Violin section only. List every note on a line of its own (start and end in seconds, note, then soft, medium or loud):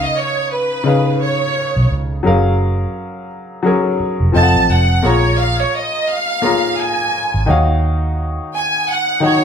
0.03 0.17 D#5 medium
0.17 0.52 C#5 medium
0.52 1.17 B4 medium
1.22 1.91 C#5 medium
4.35 4.67 A5 loud
4.70 5.05 F#5 medium
5.05 5.39 C#5 medium
5.39 5.59 F5 medium
5.60 5.74 C#5 medium
5.75 6.09 D#5 medium
6.10 6.79 F5 medium
6.80 7.49 G#5 medium
8.55 8.86 G#5 medium
8.89 9.23 F#5 medium
9.24 9.44 C#5 medium